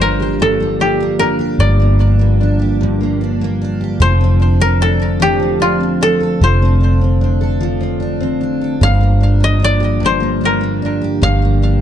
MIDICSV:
0, 0, Header, 1, 5, 480
1, 0, Start_track
1, 0, Key_signature, -2, "minor"
1, 0, Tempo, 802998
1, 950, Time_signature, 6, 3, 24, 8
1, 7061, End_track
2, 0, Start_track
2, 0, Title_t, "Koto"
2, 0, Program_c, 0, 107
2, 0, Note_on_c, 0, 72, 67
2, 0, Note_on_c, 0, 74, 84
2, 9, Note_on_c, 0, 70, 72
2, 250, Note_on_c, 0, 69, 71
2, 286, Note_off_c, 0, 70, 0
2, 484, Note_on_c, 0, 67, 65
2, 495, Note_off_c, 0, 74, 0
2, 714, Note_on_c, 0, 70, 66
2, 750, Note_off_c, 0, 69, 0
2, 918, Note_off_c, 0, 72, 0
2, 956, Note_on_c, 0, 74, 69
2, 1704, Note_off_c, 0, 67, 0
2, 1813, Note_off_c, 0, 70, 0
2, 2129, Note_off_c, 0, 74, 0
2, 2401, Note_on_c, 0, 72, 81
2, 2758, Note_on_c, 0, 70, 73
2, 2880, Note_on_c, 0, 69, 74
2, 2916, Note_off_c, 0, 70, 0
2, 3121, Note_on_c, 0, 67, 74
2, 3358, Note_on_c, 0, 65, 67
2, 3427, Note_off_c, 0, 72, 0
2, 3599, Note_off_c, 0, 69, 0
2, 3602, Note_on_c, 0, 69, 73
2, 3847, Note_on_c, 0, 72, 73
2, 4340, Note_off_c, 0, 67, 0
2, 4665, Note_off_c, 0, 65, 0
2, 4740, Note_off_c, 0, 69, 0
2, 5014, Note_off_c, 0, 72, 0
2, 5279, Note_on_c, 0, 77, 79
2, 5642, Note_on_c, 0, 75, 67
2, 5765, Note_on_c, 0, 74, 73
2, 5801, Note_off_c, 0, 75, 0
2, 6012, Note_on_c, 0, 72, 66
2, 6141, Note_off_c, 0, 77, 0
2, 6249, Note_on_c, 0, 70, 60
2, 6714, Note_on_c, 0, 77, 82
2, 6722, Note_off_c, 0, 74, 0
2, 7037, Note_off_c, 0, 72, 0
2, 7061, Note_off_c, 0, 70, 0
2, 7061, Note_off_c, 0, 77, 0
2, 7061, End_track
3, 0, Start_track
3, 0, Title_t, "Steel-string acoustic guitar"
3, 0, Program_c, 1, 25
3, 0, Note_on_c, 1, 43, 64
3, 0, Note_on_c, 1, 58, 43
3, 0, Note_on_c, 1, 62, 50
3, 118, Note_on_c, 1, 67, 49
3, 228, Note_off_c, 1, 43, 0
3, 237, Note_on_c, 1, 43, 62
3, 351, Note_off_c, 1, 58, 0
3, 360, Note_on_c, 1, 58, 44
3, 476, Note_off_c, 1, 62, 0
3, 478, Note_on_c, 1, 62, 47
3, 593, Note_off_c, 1, 58, 0
3, 600, Note_on_c, 1, 58, 47
3, 717, Note_off_c, 1, 62, 0
3, 719, Note_on_c, 1, 62, 46
3, 823, Note_off_c, 1, 67, 0
3, 830, Note_on_c, 1, 67, 49
3, 947, Note_off_c, 1, 43, 0
3, 954, Note_on_c, 1, 43, 66
3, 1067, Note_off_c, 1, 58, 0
3, 1074, Note_on_c, 1, 58, 47
3, 1188, Note_off_c, 1, 62, 0
3, 1190, Note_on_c, 1, 62, 45
3, 1303, Note_off_c, 1, 58, 0
3, 1310, Note_on_c, 1, 58, 43
3, 1437, Note_off_c, 1, 62, 0
3, 1439, Note_on_c, 1, 62, 50
3, 1543, Note_off_c, 1, 67, 0
3, 1550, Note_on_c, 1, 67, 49
3, 1672, Note_off_c, 1, 43, 0
3, 1678, Note_on_c, 1, 43, 63
3, 1790, Note_off_c, 1, 58, 0
3, 1797, Note_on_c, 1, 58, 43
3, 1916, Note_off_c, 1, 62, 0
3, 1918, Note_on_c, 1, 62, 47
3, 2033, Note_off_c, 1, 58, 0
3, 2040, Note_on_c, 1, 58, 49
3, 2158, Note_off_c, 1, 62, 0
3, 2161, Note_on_c, 1, 62, 50
3, 2270, Note_off_c, 1, 67, 0
3, 2276, Note_on_c, 1, 67, 46
3, 2391, Note_on_c, 1, 53, 67
3, 2441, Note_off_c, 1, 67, 0
3, 2442, Note_off_c, 1, 43, 0
3, 2443, Note_off_c, 1, 58, 0
3, 2515, Note_on_c, 1, 60, 46
3, 2532, Note_off_c, 1, 62, 0
3, 2628, Note_on_c, 1, 62, 50
3, 2745, Note_off_c, 1, 60, 0
3, 2752, Note_on_c, 1, 60, 46
3, 2869, Note_off_c, 1, 62, 0
3, 2872, Note_on_c, 1, 62, 49
3, 2986, Note_on_c, 1, 69, 51
3, 3105, Note_off_c, 1, 53, 0
3, 3107, Note_on_c, 1, 53, 63
3, 3218, Note_off_c, 1, 60, 0
3, 3225, Note_on_c, 1, 60, 44
3, 3344, Note_off_c, 1, 62, 0
3, 3347, Note_on_c, 1, 62, 49
3, 3463, Note_off_c, 1, 60, 0
3, 3470, Note_on_c, 1, 60, 46
3, 3590, Note_off_c, 1, 62, 0
3, 3592, Note_on_c, 1, 62, 48
3, 3701, Note_off_c, 1, 69, 0
3, 3709, Note_on_c, 1, 69, 47
3, 3832, Note_off_c, 1, 53, 0
3, 3834, Note_on_c, 1, 53, 67
3, 3949, Note_off_c, 1, 60, 0
3, 3959, Note_on_c, 1, 60, 47
3, 4066, Note_off_c, 1, 62, 0
3, 4068, Note_on_c, 1, 62, 45
3, 4185, Note_off_c, 1, 60, 0
3, 4192, Note_on_c, 1, 60, 46
3, 4308, Note_off_c, 1, 62, 0
3, 4310, Note_on_c, 1, 62, 47
3, 4422, Note_off_c, 1, 69, 0
3, 4429, Note_on_c, 1, 69, 49
3, 4544, Note_off_c, 1, 53, 0
3, 4546, Note_on_c, 1, 53, 61
3, 4658, Note_off_c, 1, 60, 0
3, 4666, Note_on_c, 1, 60, 44
3, 4779, Note_off_c, 1, 62, 0
3, 4781, Note_on_c, 1, 62, 45
3, 4898, Note_off_c, 1, 60, 0
3, 4905, Note_on_c, 1, 60, 43
3, 5023, Note_off_c, 1, 62, 0
3, 5026, Note_on_c, 1, 62, 45
3, 5142, Note_off_c, 1, 69, 0
3, 5149, Note_on_c, 1, 69, 45
3, 5267, Note_on_c, 1, 43, 67
3, 5314, Note_off_c, 1, 60, 0
3, 5316, Note_off_c, 1, 69, 0
3, 5383, Note_on_c, 1, 58, 45
3, 5501, Note_off_c, 1, 62, 0
3, 5503, Note_on_c, 1, 62, 44
3, 5614, Note_off_c, 1, 58, 0
3, 5621, Note_on_c, 1, 58, 44
3, 5733, Note_off_c, 1, 62, 0
3, 5736, Note_on_c, 1, 62, 48
3, 5859, Note_on_c, 1, 67, 50
3, 5876, Note_off_c, 1, 53, 0
3, 5972, Note_off_c, 1, 43, 0
3, 5979, Note_on_c, 1, 43, 61
3, 6092, Note_off_c, 1, 58, 0
3, 6099, Note_on_c, 1, 58, 44
3, 6219, Note_off_c, 1, 62, 0
3, 6222, Note_on_c, 1, 62, 48
3, 6334, Note_off_c, 1, 58, 0
3, 6341, Note_on_c, 1, 58, 46
3, 6467, Note_off_c, 1, 62, 0
3, 6469, Note_on_c, 1, 62, 49
3, 6577, Note_off_c, 1, 67, 0
3, 6584, Note_on_c, 1, 67, 50
3, 6697, Note_off_c, 1, 43, 0
3, 6704, Note_on_c, 1, 43, 71
3, 6821, Note_off_c, 1, 58, 0
3, 6828, Note_on_c, 1, 58, 45
3, 6946, Note_off_c, 1, 62, 0
3, 6948, Note_on_c, 1, 62, 48
3, 7058, Note_off_c, 1, 58, 0
3, 7061, Note_off_c, 1, 43, 0
3, 7061, Note_off_c, 1, 62, 0
3, 7061, Note_off_c, 1, 67, 0
3, 7061, End_track
4, 0, Start_track
4, 0, Title_t, "Tonewheel organ"
4, 0, Program_c, 2, 16
4, 0, Note_on_c, 2, 50, 50
4, 0, Note_on_c, 2, 53, 46
4, 0, Note_on_c, 2, 55, 44
4, 0, Note_on_c, 2, 58, 48
4, 0, Note_on_c, 2, 65, 58
4, 2366, Note_off_c, 2, 58, 0
4, 2368, Note_off_c, 2, 55, 0
4, 2390, Note_on_c, 2, 60, 48
4, 2394, Note_on_c, 2, 57, 50
4, 5245, Note_off_c, 2, 60, 0
4, 5246, Note_off_c, 2, 57, 0
4, 5262, Note_on_c, 2, 58, 49
4, 5267, Note_on_c, 2, 55, 46
4, 6688, Note_off_c, 2, 65, 0
4, 6708, Note_on_c, 2, 67, 59
4, 7061, Note_off_c, 2, 50, 0
4, 7061, Note_off_c, 2, 53, 0
4, 7061, Note_off_c, 2, 55, 0
4, 7061, Note_off_c, 2, 58, 0
4, 7061, Note_off_c, 2, 67, 0
4, 7061, End_track
5, 0, Start_track
5, 0, Title_t, "Fingered electric bass"
5, 0, Program_c, 3, 33
5, 0, Note_on_c, 3, 31, 81
5, 929, Note_off_c, 3, 31, 0
5, 950, Note_on_c, 3, 31, 87
5, 2366, Note_off_c, 3, 31, 0
5, 2392, Note_on_c, 3, 29, 82
5, 3806, Note_off_c, 3, 29, 0
5, 3833, Note_on_c, 3, 29, 81
5, 5246, Note_off_c, 3, 29, 0
5, 5268, Note_on_c, 3, 31, 74
5, 6684, Note_off_c, 3, 31, 0
5, 6710, Note_on_c, 3, 31, 85
5, 7061, Note_off_c, 3, 31, 0
5, 7061, End_track
0, 0, End_of_file